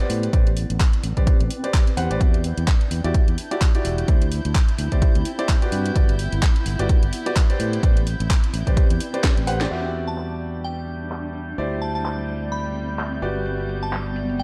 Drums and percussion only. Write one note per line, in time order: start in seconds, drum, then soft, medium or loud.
0.10 open hi-hat loud
0.23 closed hi-hat soft
0.33 kick loud
0.33 closed hi-hat medium
0.47 closed hi-hat soft
0.57 open hi-hat loud
0.70 closed hi-hat soft
0.80 kick loud
0.80 clap loud
0.80 closed hi-hat medium
0.93 closed hi-hat soft
1.03 open hi-hat loud
1.17 kick medium
1.17 closed hi-hat soft
1.27 kick loud
1.27 closed hi-hat medium
1.40 closed hi-hat soft
1.50 open hi-hat loud
1.64 closed hi-hat soft
1.74 kick loud
1.74 clap loud
1.74 closed hi-hat medium
1.87 closed hi-hat soft
1.97 open hi-hat loud
2.11 closed hi-hat soft
2.21 kick loud
2.21 closed hi-hat medium
2.34 closed hi-hat soft
2.44 open hi-hat loud
2.58 closed hi-hat soft
2.67 kick loud
2.67 clap loud
2.67 closed hi-hat medium
2.81 closed hi-hat soft
2.91 open hi-hat loud
3.04 closed hi-hat soft
3.14 kick loud
3.14 closed hi-hat medium
3.28 closed hi-hat soft
3.38 open hi-hat loud
3.51 closed hi-hat soft
3.61 kick loud
3.61 clap loud
3.61 closed hi-hat medium
3.75 closed hi-hat soft
3.85 open hi-hat loud
3.98 closed hi-hat soft
4.08 kick loud
4.08 closed hi-hat medium
4.22 closed hi-hat soft
4.32 open hi-hat loud
4.45 closed hi-hat soft
4.55 kick loud
4.55 clap loud
4.55 closed hi-hat medium
4.68 closed hi-hat soft
4.78 open hi-hat loud
4.92 kick medium
4.92 closed hi-hat soft
5.02 kick loud
5.02 closed hi-hat medium
5.15 closed hi-hat soft
5.25 open hi-hat loud
5.39 closed hi-hat soft
5.49 kick loud
5.49 clap loud
5.49 closed hi-hat medium
5.62 closed hi-hat soft
5.72 open hi-hat loud
5.86 closed hi-hat soft
5.96 kick loud
5.96 closed hi-hat medium
6.09 closed hi-hat soft
6.19 open hi-hat loud
6.32 closed hi-hat soft
6.42 kick loud
6.42 clap loud
6.42 closed hi-hat medium
6.56 closed hi-hat soft
6.66 open hi-hat loud
6.79 closed hi-hat soft
6.89 kick loud
6.89 closed hi-hat medium
7.03 closed hi-hat soft
7.13 open hi-hat loud
7.26 closed hi-hat soft
7.36 kick loud
7.36 clap loud
7.36 closed hi-hat medium
7.50 closed hi-hat soft
7.60 open hi-hat loud
7.73 closed hi-hat soft
7.83 kick loud
7.83 closed hi-hat medium
7.97 closed hi-hat soft
8.07 open hi-hat loud
8.20 closed hi-hat soft
8.30 kick loud
8.30 clap loud
8.30 closed hi-hat medium
8.44 closed hi-hat soft
8.54 open hi-hat loud
8.67 kick medium
8.67 closed hi-hat soft
8.77 kick loud
8.77 closed hi-hat medium
8.90 closed hi-hat soft
9.01 open hi-hat loud
9.14 closed hi-hat soft
9.24 kick loud
9.24 snare loud
9.24 clap loud
9.24 closed hi-hat medium
9.37 closed hi-hat soft
9.47 open hi-hat loud
9.61 snare medium
9.61 closed hi-hat soft
10.18 clap loud
10.41 open hi-hat loud
10.88 open hi-hat loud
11.11 clap loud
11.11 closed hi-hat medium
11.25 closed hi-hat soft
11.35 open hi-hat loud
11.48 closed hi-hat soft
11.72 closed hi-hat soft
11.82 open hi-hat loud
11.95 closed hi-hat soft
12.05 clap loud
12.05 closed hi-hat medium
12.19 closed hi-hat soft
12.29 open hi-hat loud
12.42 closed hi-hat soft
12.52 closed hi-hat medium
12.65 closed hi-hat soft
12.75 open hi-hat loud
12.89 closed hi-hat soft
12.99 clap loud
12.99 closed hi-hat medium
13.12 closed hi-hat soft
13.22 open hi-hat loud
13.36 closed hi-hat soft
13.46 closed hi-hat medium
13.59 closed hi-hat soft
13.69 open hi-hat loud
13.83 closed hi-hat soft
13.93 clap loud
13.93 closed hi-hat medium
14.06 closed hi-hat soft
14.16 open hi-hat loud
14.29 closed hi-hat soft
14.39 closed hi-hat medium